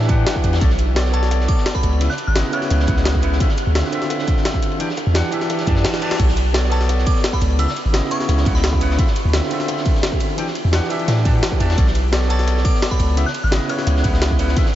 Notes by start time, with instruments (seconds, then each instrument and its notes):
Already playing: 808-style bass A2
0.01 snare
0.08 tine electric piano E3 D4 G4 F#5, kick, closed hi-hat, ride, cabasa
0.25 tine electric piano E3 D4 G4 F#5, snare, closed hi-hat, ride
0.35 kick, snare
0.44 808-style bass E2, closed hi-hat, ride, cabasa
0.53 snare, ride
0.60 808-style bass B1, tine electric piano B3 A4 C#5 D5, kick, closed hi-hat, ride
0.70 snare
0.79 closed hi-hat, ride, cabasa
0.95 tine electric piano B3 A4 C#5 D5, snare, closed hi-hat, ride
1.05 snare
1.11 tine electric piano B3 A4 C#5, synth bell A5, closed hi-hat, ride, cabasa
1.16 tine electric piano D5
1.23 snare, closed hi-hat
1.31 snare, closed hi-hat, ride
1.40 snare
1.48 synth bell D6, kick, closed hi-hat, ride, cabasa
1.58 snare
1.66 snare, closed hi-hat, ride
1.75 synth bell B5, kick, snare
1.83 808-style bass C#2, closed hi-hat, ride, cabasa
1.93 ride
2.00 tine electric piano C#3 B3 E4 E5, closed hi-hat, ride
2.10 synth bell F#6, snare
2.18 closed hi-hat, ride, cabasa
2.27 808-style bass G#1, synth bell F#6
2.35 tine electric piano C#3 B3 E4 D#5, snare, closed hi-hat, ride
2.44 snare
2.52 tine electric piano C#3 B3 E4 C#5, synth bell F#6, closed hi-hat, ride, cabasa
2.62 snare, closed hi-hat
2.70 808-style bass C#2, snare, closed hi-hat, ride
2.79 snare
2.87 808-style bass C#2, tine electric piano C#3 B3 E4 F#5, kick, closed hi-hat, ride, cabasa
2.96 tine electric piano C#3 B3 E4 D#5, snare
3.05 snare, closed hi-hat, ride
3.14 kick, snare
3.22 tine electric piano C#3 B3 E4 F#5, closed hi-hat, ride, cabasa
3.32 snare
3.39 tine electric piano D3 C4 F4 E5, kick, closed hi-hat, ride
3.49 snare
3.58 closed hi-hat, ride, cabasa
3.67 808-style bass D2
3.74 tine electric piano D3 C4 F4 E5, snare, closed hi-hat, ride
3.84 snare
3.90 tine electric piano D3 C4 F4, closed hi-hat, ride, cabasa
3.95 tine electric piano E5
4.02 snare, closed hi-hat
4.10 snare, closed hi-hat, ride
4.19 snare
4.27 kick, closed hi-hat, ride, cabasa
4.37 snare
4.45 snare, closed hi-hat, ride
4.54 kick, snare
4.63 closed hi-hat, ride, cabasa
4.72 ride
4.79 tine electric piano E3 D4 G4 G5, closed hi-hat, ride
4.89 snare
4.97 snare, closed hi-hat, ride, cabasa
5.07 808-style bass E2
5.14 tine electric piano E3 D4 G4 F#5, snare, closed hi-hat, ride
5.23 snare
5.31 tine electric piano E3 D4 G4 E5, closed hi-hat, ride, cabasa
5.41 snare, closed hi-hat
5.50 snare, closed hi-hat, ride, reverse cymbal
5.58 snare, closed hi-hat
5.66 808-style bass F#2, tine electric piano E3 D4 G4 A5, kick, closed hi-hat, ride, cabasa
5.75 tine electric piano E3 D4 G4 F#5, snare
5.84 snare, closed hi-hat, ride
5.94 snare, cabasa
6.01 tine electric piano E3 D4 G4 A5, closed hi-hat, ride, cabasa
6.11 snare, closed hi-hat
6.18 808-style bass B1, tine electric piano B3 A4 C#5 D5, kick, closed hi-hat, crash, ride
6.29 snare
6.37 closed hi-hat, ride, cabasa
6.53 tine electric piano B3 A4 C#5 D5, snare, closed hi-hat, ride
6.63 snare
6.69 tine electric piano B3 A4 C#5, synth bell A5, closed hi-hat, ride, cabasa
6.74 tine electric piano D5
6.81 snare, closed hi-hat
6.89 snare, closed hi-hat, ride
6.98 snare
7.06 synth bell D6, kick, closed hi-hat, ride, cabasa
7.16 snare
7.24 snare, closed hi-hat, ride
7.33 synth bell B5, kick, snare
7.41 808-style bass C#2, closed hi-hat, ride, cabasa
7.50 ride
7.58 tine electric piano C#3 B3 E4 E5, synth bell E6, closed hi-hat, ride
7.68 synth bell E6, snare
7.76 closed hi-hat, ride, cabasa
7.85 808-style bass G#1
7.93 tine electric piano C#3 B3 E4 D#5, snare, closed hi-hat, ride
8.02 snare
8.10 tine electric piano C#3 B3 E4 C#5, synth bell C#6, closed hi-hat, ride, cabasa
8.20 snare, closed hi-hat
8.29 808-style bass C#2, snare, closed hi-hat, ride
8.37 snare
8.45 808-style bass C#2, tine electric piano C#3 B3 E4 F#5, kick, closed hi-hat, ride, cabasa
8.54 tine electric piano C#3 B3 E4 D#5, synth bell B5, snare
8.64 snare, closed hi-hat, ride
8.73 kick, snare
8.80 tine electric piano C#3 B3 E4 F#5, closed hi-hat, ride, cabasa
8.91 snare
8.98 tine electric piano D3 C4 F4 E5, kick, closed hi-hat, ride
9.07 snare
9.16 closed hi-hat, ride, cabasa
9.25 808-style bass D2
9.32 tine electric piano D3 C4 F4 E5, snare, closed hi-hat, ride
9.43 snare
9.49 tine electric piano D3 C4 F4, closed hi-hat, ride, cabasa
9.53 tine electric piano E5
9.60 snare, closed hi-hat
9.68 snare, closed hi-hat, ride
9.77 snare
9.86 kick, closed hi-hat, ride, cabasa
9.94 snare
10.03 snare, closed hi-hat, ride
10.12 kick, snare
10.20 closed hi-hat, ride, cabasa
10.30 ride
10.37 tine electric piano E3 D4 G4 G5, closed hi-hat, ride
10.47 snare
10.55 closed hi-hat, ride, cabasa
10.65 808-style bass E2
10.72 tine electric piano E3 D4 G4 F#5, snare, closed hi-hat, ride
10.83 snare
10.89 tine electric piano E3 D4 G4 E5, closed hi-hat, ride, cabasa
10.99 closed hi-hat
11.08 808-style bass A2, snare, closed hi-hat, ride
11.17 snare
11.24 tine electric piano E3 D4 G4 A5, kick, closed hi-hat, ride, cabasa
11.33 tine electric piano E3 D4 G4 F#5
11.43 snare, closed hi-hat, ride
11.52 kick, snare
11.59 808-style bass E2, tine electric piano E3 D4 G4 A5, closed hi-hat, ride, cabasa
11.70 snare, ride
11.77 808-style bass B1, tine electric piano B3 A4 C#5 D5, kick, closed hi-hat, ride
11.87 snare
11.95 closed hi-hat, ride, cabasa
12.12 tine electric piano B3 A4 C#5 D5, snare, closed hi-hat, ride
12.22 snare
12.28 tine electric piano B3 A4 C#5, synth bell A5, closed hi-hat, ride, cabasa
12.33 tine electric piano D5
12.39 snare, closed hi-hat
12.47 snare, closed hi-hat, ride
12.57 snare
12.65 synth bell D6, kick, closed hi-hat, ride, cabasa
12.74 snare
12.82 snare, closed hi-hat, ride
12.91 synth bell B5, kick, snare
12.99 808-style bass C#2, closed hi-hat, ride, cabasa
13.10 ride
13.16 tine electric piano C#3 B3 E4 E5, closed hi-hat, ride
13.26 synth bell F#6, snare
13.34 closed hi-hat, ride, cabasa
13.44 808-style bass G#1, synth bell F#6
13.51 tine electric piano C#3 B3 E4 D#5, snare, closed hi-hat, ride
13.61 snare
13.68 tine electric piano C#3 B3 E4 C#5, synth bell F#6, closed hi-hat, ride, cabasa
13.79 snare, closed hi-hat
13.87 808-style bass C#2, snare, closed hi-hat, ride
13.97 snare
14.03 808-style bass C#2, tine electric piano C#3 B3 E4 F#5, kick, closed hi-hat, ride, cabasa
14.12 tine electric piano C#3 B3 E4 D#5, snare
14.22 snare, closed hi-hat, ride
14.31 kick, snare
14.38 tine electric piano C#3 B3 E4 F#5, closed hi-hat, ride, cabasa
14.48 snare
14.55 tine electric piano D3 C4 F4 E5, kick, closed hi-hat, ride
14.66 snare